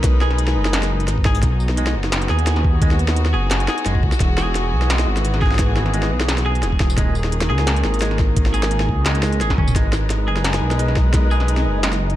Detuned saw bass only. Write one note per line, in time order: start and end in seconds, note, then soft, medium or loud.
0.00 0.58 B1 medium
0.56 1.10 F#1 medium
1.09 1.42 G#1 loud
1.43 1.97 B1 loud
1.95 2.29 F#1 loud
2.30 3.36 D#2 medium
3.34 3.68 F#1 medium
3.86 4.04 F#1 medium
4.03 4.12 C#2 medium
4.20 4.74 E1 loud
4.73 5.06 B1 loud
5.07 6.13 G#1 medium
6.11 6.65 B1 loud
6.63 6.97 E1 loud
6.98 7.51 D#1 loud
7.50 7.83 C#2 loud
7.84 8.90 G#1 medium
8.89 9.43 C#2 loud
9.41 9.60 G#1 medium
9.58 9.74 E1 loud
9.76 10.29 G#1 loud
10.27 10.61 F#1 medium
10.62 11.68 B1 medium
11.66 12.16 F#1 medium